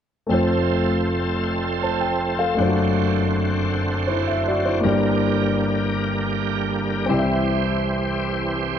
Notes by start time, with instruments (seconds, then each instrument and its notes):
0.27 grand piano F1 F2 A3 C4, tonewheel organ A3 A4 C5
0.31 tonewheel organ F3 C4, grand piano F4 C5
1.82 grand piano C5 A5
2.00 grand piano G5
2.39 grand piano A4 F5
2.54 grand piano F#1 A3 D4
2.58 grand piano F#2 F4 C5, tonewheel organ F#2 D3 F#4
2.65 grand piano F#4
4.07 grand piano E4 C5
4.27 grand piano E5
4.47 grand piano F#4 D5
4.65 grand piano E4 C5
4.80 grand piano G1 G2 A#3 D4, tonewheel organ D3 G3 A#3 G4
4.84 grand piano G4 D5, tonewheel organ A#4
7.06 grand piano C2 C3 C4 E4, tonewheel organ E3 C4 C5
7.10 grand piano G4 D5
7.19 grand piano E5